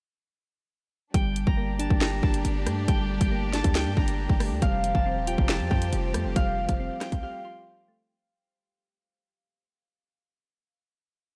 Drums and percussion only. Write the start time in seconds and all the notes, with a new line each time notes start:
1.14 kick, closed hi-hat
1.36 closed hi-hat
1.47 kick
1.80 closed hi-hat
1.90 kick
2.01 finger snap, snare
2.23 kick
2.34 closed hi-hat
2.45 closed hi-hat
2.67 cross-stick, closed hi-hat
2.88 kick, closed hi-hat
3.21 kick, closed hi-hat
3.53 snare, closed hi-hat
3.64 kick, closed hi-hat
3.75 finger snap, snare, closed hi-hat
3.97 kick
4.08 closed hi-hat
4.29 kick
4.40 cross-stick, open hi-hat
4.62 kick, closed hi-hat
4.84 closed hi-hat
4.95 kick
5.27 closed hi-hat
5.38 kick
5.49 finger snap, snare
5.71 kick
5.82 closed hi-hat
5.93 closed hi-hat
6.14 cross-stick, closed hi-hat
6.36 kick, closed hi-hat
6.69 kick, closed hi-hat
7.01 cross-stick, snare, closed hi-hat
7.12 kick, closed hi-hat